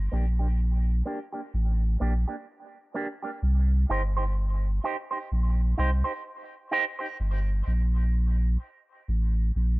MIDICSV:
0, 0, Header, 1, 3, 480
1, 0, Start_track
1, 0, Key_signature, -2, "minor"
1, 0, Tempo, 943396
1, 1738, Time_signature, 4, 2, 24, 8
1, 4984, End_track
2, 0, Start_track
2, 0, Title_t, "Clean electric guitar"
2, 0, Program_c, 0, 27
2, 59, Note_on_c, 0, 58, 75
2, 64, Note_on_c, 0, 62, 76
2, 69, Note_on_c, 0, 67, 89
2, 119, Note_off_c, 0, 58, 0
2, 122, Note_off_c, 0, 62, 0
2, 124, Note_off_c, 0, 67, 0
2, 199, Note_on_c, 0, 67, 60
2, 203, Note_on_c, 0, 62, 51
2, 208, Note_on_c, 0, 58, 48
2, 233, Note_off_c, 0, 67, 0
2, 235, Note_off_c, 0, 62, 0
2, 237, Note_off_c, 0, 58, 0
2, 537, Note_on_c, 0, 58, 83
2, 540, Note_on_c, 0, 62, 84
2, 543, Note_on_c, 0, 67, 97
2, 597, Note_off_c, 0, 58, 0
2, 599, Note_off_c, 0, 62, 0
2, 601, Note_off_c, 0, 67, 0
2, 674, Note_on_c, 0, 67, 59
2, 680, Note_on_c, 0, 62, 48
2, 684, Note_on_c, 0, 58, 49
2, 710, Note_off_c, 0, 67, 0
2, 713, Note_off_c, 0, 62, 0
2, 715, Note_off_c, 0, 58, 0
2, 1017, Note_on_c, 0, 58, 72
2, 1023, Note_on_c, 0, 62, 87
2, 1027, Note_on_c, 0, 67, 88
2, 1077, Note_off_c, 0, 58, 0
2, 1080, Note_off_c, 0, 62, 0
2, 1082, Note_off_c, 0, 67, 0
2, 1158, Note_on_c, 0, 67, 62
2, 1163, Note_on_c, 0, 62, 52
2, 1167, Note_on_c, 0, 58, 52
2, 1192, Note_off_c, 0, 67, 0
2, 1194, Note_off_c, 0, 62, 0
2, 1196, Note_off_c, 0, 58, 0
2, 1498, Note_on_c, 0, 58, 83
2, 1503, Note_on_c, 0, 62, 94
2, 1507, Note_on_c, 0, 67, 92
2, 1557, Note_off_c, 0, 58, 0
2, 1560, Note_off_c, 0, 62, 0
2, 1562, Note_off_c, 0, 67, 0
2, 1641, Note_on_c, 0, 67, 57
2, 1646, Note_on_c, 0, 62, 48
2, 1651, Note_on_c, 0, 58, 48
2, 1673, Note_off_c, 0, 67, 0
2, 1675, Note_off_c, 0, 62, 0
2, 1678, Note_off_c, 0, 58, 0
2, 1981, Note_on_c, 0, 63, 77
2, 1985, Note_on_c, 0, 67, 77
2, 1990, Note_on_c, 0, 72, 91
2, 2039, Note_off_c, 0, 63, 0
2, 2041, Note_off_c, 0, 67, 0
2, 2043, Note_off_c, 0, 72, 0
2, 2120, Note_on_c, 0, 72, 66
2, 2123, Note_on_c, 0, 67, 56
2, 2126, Note_on_c, 0, 63, 50
2, 2152, Note_off_c, 0, 72, 0
2, 2154, Note_off_c, 0, 67, 0
2, 2155, Note_off_c, 0, 63, 0
2, 2461, Note_on_c, 0, 63, 82
2, 2466, Note_on_c, 0, 67, 89
2, 2469, Note_on_c, 0, 72, 81
2, 2519, Note_off_c, 0, 63, 0
2, 2521, Note_off_c, 0, 67, 0
2, 2523, Note_off_c, 0, 72, 0
2, 2599, Note_on_c, 0, 72, 59
2, 2603, Note_on_c, 0, 67, 50
2, 2608, Note_on_c, 0, 63, 44
2, 2632, Note_off_c, 0, 72, 0
2, 2634, Note_off_c, 0, 67, 0
2, 2636, Note_off_c, 0, 63, 0
2, 2939, Note_on_c, 0, 63, 81
2, 2943, Note_on_c, 0, 67, 77
2, 2949, Note_on_c, 0, 72, 84
2, 2997, Note_off_c, 0, 63, 0
2, 3000, Note_off_c, 0, 67, 0
2, 3003, Note_off_c, 0, 72, 0
2, 3074, Note_on_c, 0, 72, 61
2, 3078, Note_on_c, 0, 67, 58
2, 3083, Note_on_c, 0, 63, 50
2, 3109, Note_off_c, 0, 72, 0
2, 3111, Note_off_c, 0, 67, 0
2, 3114, Note_off_c, 0, 63, 0
2, 3416, Note_on_c, 0, 63, 96
2, 3420, Note_on_c, 0, 67, 101
2, 3424, Note_on_c, 0, 72, 94
2, 3476, Note_off_c, 0, 63, 0
2, 3478, Note_off_c, 0, 67, 0
2, 3480, Note_off_c, 0, 72, 0
2, 3556, Note_on_c, 0, 72, 57
2, 3562, Note_on_c, 0, 67, 54
2, 3566, Note_on_c, 0, 63, 48
2, 3590, Note_off_c, 0, 72, 0
2, 3593, Note_off_c, 0, 67, 0
2, 3595, Note_off_c, 0, 63, 0
2, 4984, End_track
3, 0, Start_track
3, 0, Title_t, "Sub bass"
3, 0, Program_c, 1, 38
3, 64, Note_on_c, 1, 34, 86
3, 521, Note_off_c, 1, 34, 0
3, 783, Note_on_c, 1, 33, 94
3, 1000, Note_off_c, 1, 33, 0
3, 1023, Note_on_c, 1, 34, 77
3, 1146, Note_off_c, 1, 34, 0
3, 1743, Note_on_c, 1, 36, 108
3, 1960, Note_off_c, 1, 36, 0
3, 1984, Note_on_c, 1, 31, 90
3, 2440, Note_off_c, 1, 31, 0
3, 2705, Note_on_c, 1, 34, 91
3, 2921, Note_off_c, 1, 34, 0
3, 2944, Note_on_c, 1, 36, 83
3, 3067, Note_off_c, 1, 36, 0
3, 3663, Note_on_c, 1, 31, 109
3, 3880, Note_off_c, 1, 31, 0
3, 3903, Note_on_c, 1, 34, 92
3, 4360, Note_off_c, 1, 34, 0
3, 4622, Note_on_c, 1, 33, 86
3, 4840, Note_off_c, 1, 33, 0
3, 4863, Note_on_c, 1, 34, 81
3, 4984, Note_off_c, 1, 34, 0
3, 4984, End_track
0, 0, End_of_file